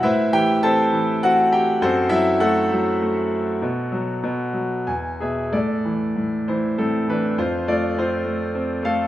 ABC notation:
X:1
M:3/4
L:1/8
Q:1/4=100
K:Em
V:1 name="Grand piano"
[EBce] [Gg] [Aca]2 [Ff] [Gg] | [CFAc] [Ee] [FAf]4- | [FAf]4 ^g [^Ge] | [K:Am] [Ad]3 [Ec] [CA] [DB] |
[Fc] [Fd] [Fc]3 [Af] |]
V:2 name="Grand piano" clef=bass
A,, E, C E, C2 | F,, F, A, F, A,2 | B,, F, B,, F, E,, B,, | [K:Am] A,, E, A,, E, A,, E, |
F,, A, C A, C A, |]